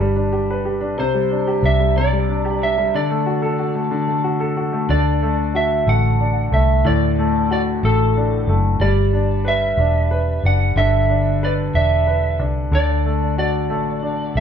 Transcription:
Already playing: fingered electric bass G1, upright piano D4 G4 B4
0.00 upright piano G3
0.16 upright piano D4
0.33 upright piano G4
0.50 upright piano B4
0.65 upright piano G4
0.81 upright piano D4
0.97 fingered electric bass C2, upright piano C3, electric slide guitar C5
1.14 upright piano G3
1.31 upright piano D4
1.47 upright piano G4
1.63 fingered electric bass C2, upright piano D4, electric slide guitar E5
1.80 upright piano G3
1.96 upright piano C3, electric slide guitar D5
2.13 upright piano G3
2.29 upright piano D4
2.45 upright piano G4
2.62 upright piano D4, electric slide guitar E5
2.78 upright piano G3
2.94 upright piano D3, electric slide guitar D5
3.10 upright piano A3
3.26 upright piano F#4
3.42 upright piano A4
3.59 upright piano F#4
3.75 upright piano A3
3.91 upright piano D3
4.08 upright piano A3
4.24 upright piano F#4
4.40 upright piano A4
4.57 upright piano F#4
4.73 upright piano A3
4.89 fingered electric bass D2, upright piano D3, electric slide guitar D5
5.23 upright piano A3
5.55 upright piano F#4, electric slide guitar E5
5.87 fingered electric bass A1, upright piano A3, electric slide guitar F#5
6.20 upright piano D4
6.52 fingered electric bass C2, upright piano A3, electric slide guitar E5
6.85 fingered electric bass D2, upright piano A2, electric slide guitar D5
7.19 upright piano A3
7.51 upright piano F#4, electric slide guitar D5
7.83 fingered electric bass A1, upright piano A3, electric slide guitar A4
8.17 upright piano D4
8.47 fingered electric bass F#1, upright piano A3
8.80 fingered electric bass G1, upright piano G3, electric slide guitar D5
9.13 upright piano D4
9.45 upright piano B4, electric slide guitar E5
9.77 fingered electric bass E1, upright piano D4
10.11 upright piano B4
10.43 fingered electric bass F#1, upright piano D4, electric slide guitar F#5
10.76 fingered electric bass G1, upright piano D3, electric slide guitar E5
11.10 upright piano D4
11.43 upright piano B4, electric slide guitar D5
11.74 fingered electric bass E1, upright piano D4, electric slide guitar E5
12.07 upright piano B4
12.39 fingered electric bass C2, upright piano D4
12.71 fingered electric bass D2, upright piano D3, electric slide guitar D5
13.06 upright piano A3
13.38 upright piano F#4, electric slide guitar D5
13.69 fingered electric bass A1, upright piano A3
14.03 upright piano D4
14.35 fingered electric bass C2, upright piano A3, electric slide guitar F#5

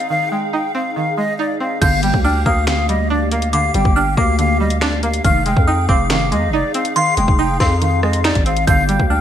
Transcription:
Already playing: synth pluck G#3 C4 D#4, analog synth pad D#4 G#4 F5
0.10 synth pluck D#3, flute F5
0.31 synth pluck G#3, flute G5
0.53 synth pluck D#4, flute G5
0.75 synth pluck C4, flute F5
0.96 synth pluck D#3, flute F5
1.18 synth pluck G#3, flute D#5
1.39 synth pluck D#4, flute D5
1.60 synth pluck C4, flute F5
1.82 808-style bass G1, synth pluck D3, analog synth pad A#3 G4 F5, flute F5, synth bell G6, kick, closed hi-hat, crash
2.03 synth pluck G3, flute G5, closed hi-hat
2.14 808-style bass D2, kick
2.24 synth pluck D4, flute G5, synth bell F6
2.46 808-style bass D2, synth pluck A#3, flute F5, synth bell D#6, kick
2.67 synth pluck D3, flute F5, finger snap, snare, closed hi-hat
2.89 synth pluck G3, flute D#5, closed hi-hat
3.10 synth pluck D4, flute D5
3.32 synth pluck A#3, flute F5, closed hi-hat
3.42 closed hi-hat
3.53 synth pluck D3, flute F5, synth bell D6, closed hi-hat
3.74 808-style bass G1, synth pluck G3, flute G5, closed hi-hat
3.85 808-style bass G1, kick
3.96 synth pluck D4, flute G5, synth bell F6
4.17 808-style bass D2, synth pluck A#3, flute F5, synth bell D6, kick
4.39 synth pluck D3, flute F5, closed hi-hat
4.60 synth pluck G3, flute D#5
4.70 closed hi-hat
4.81 synth pluck D4, flute D5, finger snap, snare, closed hi-hat
5.03 synth pluck A#3, flute F5, closed hi-hat
5.14 closed hi-hat
5.24 808-style bass F1, synth pluck D#3, analog synth pad D#4 G#4, flute F5, synth bell F6, kick, closed hi-hat
5.46 synth pluck G#3, flute G5, closed hi-hat
5.57 808-style bass F2, kick
5.67 synth pluck D#4, flute G5, synth bell D#6
5.89 808-style bass F1, synth pluck C4, flute F5, synth bell D6, kick
6.10 synth pluck D#3, flute F5, finger snap, snare, closed hi-hat
6.32 808-style bass F2, synth pluck G#3, flute D#5, closed hi-hat
6.48 808-style bass F1
6.53 synth pluck D#4, flute D5
6.74 synth pluck C4, flute F5, closed hi-hat
6.85 closed hi-hat
6.96 synth pluck D#3, flute F5, synth bell C6, closed hi-hat
7.17 808-style bass F1, synth pluck G#3, flute G5, closed hi-hat
7.28 808-style bass F1, kick
7.39 synth pluck D#4, flute G5, synth bell D#6
7.60 808-style bass F2, synth pluck C4, flute F5, synth bell C6, kick, snare
7.81 synth pluck D#3, flute F5, closed hi-hat
8.03 synth pluck G#3, flute D#5, cross-stick
8.13 closed hi-hat
8.24 synth pluck D#4, flute D5, finger snap, snare, closed hi-hat
8.35 808-style bass G#1, kick, closed hi-hat
8.46 synth pluck C4, flute F5, closed hi-hat
8.57 closed hi-hat
8.67 808-style bass G1, synth pluck D3, analog synth pad A#3 G4, flute F5, synth bell G6, kick, closed hi-hat
8.89 synth pluck G3, flute G5, closed hi-hat
9.00 808-style bass D2, kick
9.10 synth pluck D4, flute G5, synth bell F6

